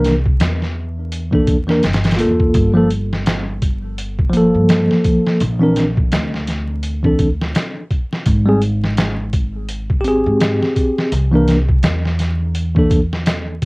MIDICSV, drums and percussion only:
0, 0, Header, 1, 2, 480
1, 0, Start_track
1, 0, Tempo, 714286
1, 1712, Time_signature, 4, 2, 24, 8
1, 9173, End_track
2, 0, Start_track
2, 0, Title_t, "Drums"
2, 30, Note_on_c, 9, 42, 66
2, 36, Note_on_c, 9, 38, 50
2, 97, Note_off_c, 9, 42, 0
2, 104, Note_off_c, 9, 38, 0
2, 172, Note_on_c, 9, 36, 93
2, 239, Note_off_c, 9, 36, 0
2, 269, Note_on_c, 9, 42, 87
2, 276, Note_on_c, 9, 38, 111
2, 336, Note_off_c, 9, 42, 0
2, 343, Note_off_c, 9, 38, 0
2, 418, Note_on_c, 9, 38, 35
2, 485, Note_off_c, 9, 38, 0
2, 753, Note_on_c, 9, 42, 82
2, 820, Note_off_c, 9, 42, 0
2, 892, Note_on_c, 9, 36, 93
2, 959, Note_off_c, 9, 36, 0
2, 989, Note_on_c, 9, 42, 69
2, 990, Note_on_c, 9, 36, 94
2, 1057, Note_off_c, 9, 36, 0
2, 1057, Note_off_c, 9, 42, 0
2, 1136, Note_on_c, 9, 38, 51
2, 1203, Note_off_c, 9, 38, 0
2, 1229, Note_on_c, 9, 42, 64
2, 1236, Note_on_c, 9, 38, 85
2, 1296, Note_off_c, 9, 42, 0
2, 1299, Note_on_c, 9, 42, 62
2, 1303, Note_off_c, 9, 38, 0
2, 1306, Note_on_c, 9, 38, 85
2, 1366, Note_off_c, 9, 42, 0
2, 1371, Note_on_c, 9, 42, 59
2, 1373, Note_off_c, 9, 38, 0
2, 1378, Note_on_c, 9, 38, 81
2, 1419, Note_off_c, 9, 42, 0
2, 1419, Note_on_c, 9, 42, 64
2, 1426, Note_off_c, 9, 38, 0
2, 1426, Note_on_c, 9, 38, 83
2, 1470, Note_off_c, 9, 42, 0
2, 1470, Note_on_c, 9, 42, 80
2, 1493, Note_off_c, 9, 38, 0
2, 1537, Note_off_c, 9, 42, 0
2, 1612, Note_on_c, 9, 36, 85
2, 1679, Note_off_c, 9, 36, 0
2, 1708, Note_on_c, 9, 42, 79
2, 1711, Note_on_c, 9, 36, 101
2, 1775, Note_off_c, 9, 42, 0
2, 1778, Note_off_c, 9, 36, 0
2, 1952, Note_on_c, 9, 42, 64
2, 2019, Note_off_c, 9, 42, 0
2, 2102, Note_on_c, 9, 38, 46
2, 2169, Note_off_c, 9, 38, 0
2, 2191, Note_on_c, 9, 42, 86
2, 2198, Note_on_c, 9, 38, 117
2, 2258, Note_off_c, 9, 42, 0
2, 2265, Note_off_c, 9, 38, 0
2, 2432, Note_on_c, 9, 36, 97
2, 2432, Note_on_c, 9, 42, 71
2, 2499, Note_off_c, 9, 42, 0
2, 2500, Note_off_c, 9, 36, 0
2, 2675, Note_on_c, 9, 42, 84
2, 2742, Note_off_c, 9, 42, 0
2, 2814, Note_on_c, 9, 36, 95
2, 2881, Note_off_c, 9, 36, 0
2, 2911, Note_on_c, 9, 42, 72
2, 2979, Note_off_c, 9, 42, 0
2, 3151, Note_on_c, 9, 42, 81
2, 3158, Note_on_c, 9, 38, 104
2, 3218, Note_off_c, 9, 42, 0
2, 3225, Note_off_c, 9, 38, 0
2, 3299, Note_on_c, 9, 38, 45
2, 3366, Note_off_c, 9, 38, 0
2, 3390, Note_on_c, 9, 42, 69
2, 3392, Note_on_c, 9, 36, 94
2, 3458, Note_off_c, 9, 42, 0
2, 3459, Note_off_c, 9, 36, 0
2, 3539, Note_on_c, 9, 38, 50
2, 3606, Note_off_c, 9, 38, 0
2, 3631, Note_on_c, 9, 42, 80
2, 3699, Note_off_c, 9, 42, 0
2, 3871, Note_on_c, 9, 42, 66
2, 3878, Note_on_c, 9, 38, 51
2, 3938, Note_off_c, 9, 42, 0
2, 3945, Note_off_c, 9, 38, 0
2, 4014, Note_on_c, 9, 36, 97
2, 4081, Note_off_c, 9, 36, 0
2, 4111, Note_on_c, 9, 42, 86
2, 4118, Note_on_c, 9, 38, 120
2, 4178, Note_off_c, 9, 42, 0
2, 4185, Note_off_c, 9, 38, 0
2, 4261, Note_on_c, 9, 38, 38
2, 4329, Note_off_c, 9, 38, 0
2, 4350, Note_on_c, 9, 42, 68
2, 4357, Note_on_c, 9, 38, 41
2, 4418, Note_off_c, 9, 42, 0
2, 4424, Note_off_c, 9, 38, 0
2, 4589, Note_on_c, 9, 42, 80
2, 4656, Note_off_c, 9, 42, 0
2, 4733, Note_on_c, 9, 36, 88
2, 4800, Note_off_c, 9, 36, 0
2, 4830, Note_on_c, 9, 42, 66
2, 4831, Note_on_c, 9, 36, 93
2, 4897, Note_off_c, 9, 42, 0
2, 4899, Note_off_c, 9, 36, 0
2, 4982, Note_on_c, 9, 38, 53
2, 5049, Note_off_c, 9, 38, 0
2, 5072, Note_on_c, 9, 42, 87
2, 5079, Note_on_c, 9, 38, 105
2, 5140, Note_off_c, 9, 42, 0
2, 5146, Note_off_c, 9, 38, 0
2, 5312, Note_on_c, 9, 36, 96
2, 5312, Note_on_c, 9, 42, 71
2, 5379, Note_off_c, 9, 36, 0
2, 5379, Note_off_c, 9, 42, 0
2, 5461, Note_on_c, 9, 38, 52
2, 5528, Note_off_c, 9, 38, 0
2, 5549, Note_on_c, 9, 42, 88
2, 5552, Note_on_c, 9, 36, 106
2, 5616, Note_off_c, 9, 42, 0
2, 5619, Note_off_c, 9, 36, 0
2, 5790, Note_on_c, 9, 42, 68
2, 5857, Note_off_c, 9, 42, 0
2, 5938, Note_on_c, 9, 38, 45
2, 6005, Note_off_c, 9, 38, 0
2, 6029, Note_on_c, 9, 42, 87
2, 6036, Note_on_c, 9, 38, 124
2, 6097, Note_off_c, 9, 42, 0
2, 6103, Note_off_c, 9, 38, 0
2, 6269, Note_on_c, 9, 42, 70
2, 6271, Note_on_c, 9, 36, 94
2, 6336, Note_off_c, 9, 42, 0
2, 6339, Note_off_c, 9, 36, 0
2, 6510, Note_on_c, 9, 42, 88
2, 6577, Note_off_c, 9, 42, 0
2, 6653, Note_on_c, 9, 36, 96
2, 6720, Note_off_c, 9, 36, 0
2, 6751, Note_on_c, 9, 42, 63
2, 6818, Note_off_c, 9, 42, 0
2, 6993, Note_on_c, 9, 42, 84
2, 6999, Note_on_c, 9, 38, 117
2, 7060, Note_off_c, 9, 42, 0
2, 7066, Note_off_c, 9, 38, 0
2, 7141, Note_on_c, 9, 38, 49
2, 7208, Note_off_c, 9, 38, 0
2, 7232, Note_on_c, 9, 42, 66
2, 7233, Note_on_c, 9, 36, 90
2, 7300, Note_off_c, 9, 36, 0
2, 7300, Note_off_c, 9, 42, 0
2, 7381, Note_on_c, 9, 38, 54
2, 7448, Note_off_c, 9, 38, 0
2, 7473, Note_on_c, 9, 42, 89
2, 7540, Note_off_c, 9, 42, 0
2, 7713, Note_on_c, 9, 42, 64
2, 7719, Note_on_c, 9, 38, 50
2, 7780, Note_off_c, 9, 42, 0
2, 7786, Note_off_c, 9, 38, 0
2, 7853, Note_on_c, 9, 36, 97
2, 7921, Note_off_c, 9, 36, 0
2, 7949, Note_on_c, 9, 42, 92
2, 7955, Note_on_c, 9, 38, 113
2, 8016, Note_off_c, 9, 42, 0
2, 8023, Note_off_c, 9, 38, 0
2, 8100, Note_on_c, 9, 38, 36
2, 8167, Note_off_c, 9, 38, 0
2, 8191, Note_on_c, 9, 42, 71
2, 8198, Note_on_c, 9, 38, 39
2, 8258, Note_off_c, 9, 42, 0
2, 8265, Note_off_c, 9, 38, 0
2, 8431, Note_on_c, 9, 42, 85
2, 8498, Note_off_c, 9, 42, 0
2, 8574, Note_on_c, 9, 36, 94
2, 8641, Note_off_c, 9, 36, 0
2, 8673, Note_on_c, 9, 36, 94
2, 8674, Note_on_c, 9, 42, 70
2, 8740, Note_off_c, 9, 36, 0
2, 8741, Note_off_c, 9, 42, 0
2, 8822, Note_on_c, 9, 38, 53
2, 8889, Note_off_c, 9, 38, 0
2, 8911, Note_on_c, 9, 42, 84
2, 8917, Note_on_c, 9, 38, 108
2, 8978, Note_off_c, 9, 42, 0
2, 8985, Note_off_c, 9, 38, 0
2, 9152, Note_on_c, 9, 42, 73
2, 9173, Note_off_c, 9, 42, 0
2, 9173, End_track
0, 0, End_of_file